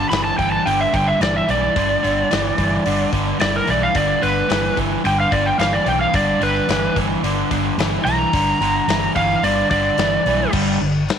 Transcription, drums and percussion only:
0.12 snare loud
0.12 open hi-hat medium
0.39 kick medium
0.39 open hi-hat soft
0.67 open hi-hat medium
0.94 kick medium
0.94 open hi-hat medium
1.21 snare loud
1.21 open hi-hat medium
1.49 open hi-hat medium
1.76 kick loud
1.76 open hi-hat medium
2.04 open hi-hat medium
2.31 snare loud
2.31 open hi-hat medium
2.58 kick medium
2.58 open hi-hat medium
2.86 open hi-hat medium
3.13 kick loud
3.13 open hi-hat medium
3.40 snare loud
3.40 open hi-hat medium
3.67 open hi-hat medium
3.95 kick loud
3.95 open hi-hat medium
4.23 open hi-hat medium
4.50 snare loud
4.50 open hi-hat medium
4.77 kick medium
4.77 open hi-hat medium
5.05 open hi-hat medium
5.32 kick medium
5.32 open hi-hat medium
5.60 snare loud
5.60 open hi-hat medium
5.86 open hi-hat medium
6.14 kick loud
6.14 open hi-hat medium
6.42 open hi-hat medium
6.69 snare loud
6.69 open hi-hat medium
6.96 kick medium
6.96 open hi-hat medium
7.24 open hi-hat medium
7.51 kick medium
7.51 open hi-hat medium
7.79 snare loud
7.79 open hi-hat medium
8.07 open hi-hat medium
8.33 kick loud
8.33 open hi-hat medium
8.62 open hi-hat medium
8.89 snare loud
8.89 open hi-hat medium
9.16 kick medium
9.16 open hi-hat medium
9.44 open hi-hat medium
9.71 kick medium
9.71 open hi-hat medium
9.98 snare loud
9.98 open hi-hat medium
10.26 open hi-hat medium
10.53 kick loud
10.53 crash loud
10.53 crash medium
11.09 snare loud
11.09 crash medium

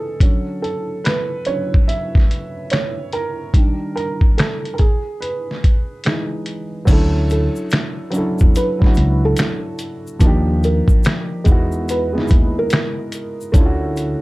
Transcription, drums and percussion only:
0.20 kick loud
0.20 closed hi-hat medium
0.64 closed hi-hat soft
1.05 finger snap medium
1.05 snare loud
1.05 closed hi-hat medium
1.45 closed hi-hat medium
1.74 kick medium
1.89 closed hi-hat medium
2.15 kick medium
2.15 snare soft
2.31 closed hi-hat medium
2.70 finger snap medium
2.70 snare medium
2.70 closed hi-hat medium
3.13 closed hi-hat medium
3.54 kick medium
3.54 closed hi-hat medium
3.97 closed hi-hat soft
4.21 kick medium
4.38 finger snap medium
4.38 snare loud
4.38 closed hi-hat medium
4.65 closed hi-hat soft
4.78 kick medium
4.78 closed hi-hat medium
5.22 closed hi-hat medium
5.51 snare soft
5.64 kick medium
5.64 closed hi-hat medium
6.04 finger snap medium
6.04 snare medium
6.04 closed hi-hat medium
6.46 closed hi-hat medium
6.87 kick loud
6.87 closed hi-hat medium
6.87 crash medium
6.87 shaker medium
7.30 closed hi-hat soft
7.30 shaker soft
7.56 shaker medium
7.70 finger snap medium
7.70 snare loud
7.70 closed hi-hat medium
7.70 shaker medium
8.12 closed hi-hat medium
8.12 shaker medium
8.39 kick loud
8.39 shaker medium
8.55 closed hi-hat medium
8.55 shaker medium
8.82 kick medium
8.82 snare soft
8.95 closed hi-hat medium
8.95 shaker medium
9.37 finger snap medium
9.37 snare loud
9.37 closed hi-hat medium
9.37 shaker medium
9.79 closed hi-hat medium
9.79 shaker soft
10.07 shaker medium
10.20 kick loud
10.20 closed hi-hat medium
10.20 shaker medium
10.63 closed hi-hat medium
10.63 shaker medium
10.88 kick loud
10.88 shaker medium
11.03 finger snap medium
11.03 snare loud
11.03 closed hi-hat medium
11.03 shaker medium
11.45 kick loud
11.45 closed hi-hat medium
11.45 shaker medium
11.72 shaker medium
11.89 closed hi-hat medium
11.89 shaker medium
12.18 snare soft
12.28 kick medium
12.28 closed hi-hat medium
12.28 shaker medium
12.70 finger snap medium
12.70 snare loud
12.70 closed hi-hat medium
12.70 shaker medium
13.12 closed hi-hat medium
13.12 shaker soft
13.41 shaker soft
13.54 kick loud
13.54 closed hi-hat medium
13.54 shaker medium
13.96 closed hi-hat soft
13.96 shaker medium

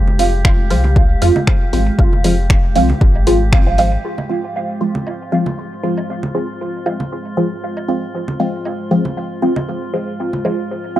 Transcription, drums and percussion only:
0.08 low conga medium
0.19 open hi-hat medium
0.45 finger snap medium
0.45 kick loud
0.45 low woodblock soft
0.70 open hi-hat medium
0.84 low conga medium
0.96 kick loud
1.22 open hi-hat medium
1.36 low conga loud
1.36 low woodblock soft
1.47 finger snap medium
1.47 kick loud
1.73 open hi-hat medium
1.99 kick loud
2.13 low conga medium
2.24 open hi-hat medium
2.24 low woodblock soft
2.50 finger snap medium
2.50 kick loud
2.76 open hi-hat medium
2.90 low conga medium
3.01 kick loud
3.15 low woodblock soft
3.27 open hi-hat medium
3.53 finger snap medium
3.53 kick loud
3.78 open hi-hat medium
4.18 low conga medium
4.18 low woodblock soft
4.95 low conga medium
5.07 low woodblock soft
5.46 low conga medium
5.97 low woodblock soft
6.23 low conga medium
6.86 low woodblock soft
7.00 low conga medium
7.77 low woodblock soft
8.28 low conga medium
8.65 low woodblock soft
9.05 low conga medium
9.56 low conga medium
9.56 low woodblock soft
10.33 low conga medium
10.45 low woodblock soft

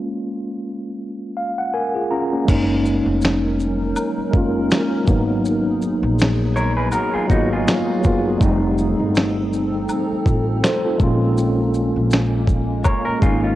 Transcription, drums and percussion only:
2.48 kick loud
2.48 crash medium
2.48 maracas medium
2.85 maracas medium
3.22 finger snap medium
3.22 snare loud
3.22 maracas medium
3.60 maracas soft
3.96 high woodblock medium
3.96 maracas medium
4.33 kick medium
4.33 maracas soft
4.71 finger snap medium
4.71 snare loud
4.71 maracas medium
5.07 kick loud
5.07 maracas soft
5.45 maracas medium
5.82 maracas medium
6.19 finger snap medium
6.19 snare loud
6.19 maracas medium
6.56 maracas soft
6.92 high woodblock medium
6.92 maracas medium
7.30 kick medium
7.30 maracas soft
7.68 finger snap medium
7.68 snare loud
7.68 maracas medium
8.04 kick medium
8.04 maracas medium
8.41 kick loud
8.41 maracas medium
8.78 maracas medium
9.15 finger snap medium
9.15 snare loud
9.15 maracas medium
9.53 maracas soft
9.89 high woodblock medium
9.89 maracas medium
10.26 kick medium
10.26 maracas soft
10.64 finger snap loud
10.64 snare loud
10.64 maracas medium
11.00 kick loud
11.00 maracas medium
11.37 maracas medium
11.74 maracas medium
12.11 finger snap medium
12.11 snare loud
12.11 maracas medium
12.48 kick medium
12.48 maracas soft
12.84 kick medium
12.84 high woodblock medium
12.84 maracas medium
13.22 kick loud
13.22 maracas soft

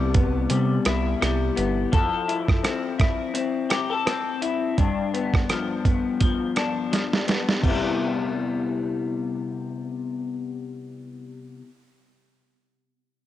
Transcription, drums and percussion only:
0.14 kick medium
0.14 closed hi-hat soft
0.50 closed hi-hat medium
0.85 cross-stick medium
0.85 closed hi-hat soft
1.22 cross-stick medium
1.22 closed hi-hat medium
1.57 closed hi-hat soft
1.93 kick loud
1.93 closed hi-hat medium
2.29 closed hi-hat soft
2.48 kick medium
2.48 cross-stick medium
2.64 cross-stick medium
2.64 closed hi-hat medium
3.00 kick medium
3.00 cross-stick medium
3.00 closed hi-hat soft
3.35 closed hi-hat medium
3.70 cross-stick medium
3.70 closed hi-hat soft
4.07 cross-stick medium
4.07 closed hi-hat medium
4.42 closed hi-hat soft
4.78 kick medium
4.78 closed hi-hat medium
5.15 closed hi-hat soft
5.34 kick medium
5.34 cross-stick medium
5.50 cross-stick medium
5.50 closed hi-hat medium
5.85 kick medium
5.85 closed hi-hat soft
6.20 kick medium
6.20 closed hi-hat medium
6.56 cross-stick medium
6.56 closed hi-hat soft
6.93 snare soft
6.93 closed hi-hat medium
7.13 snare medium
7.28 snare medium
7.28 closed hi-hat soft
7.49 snare medium
7.63 kick medium
7.63 crash medium

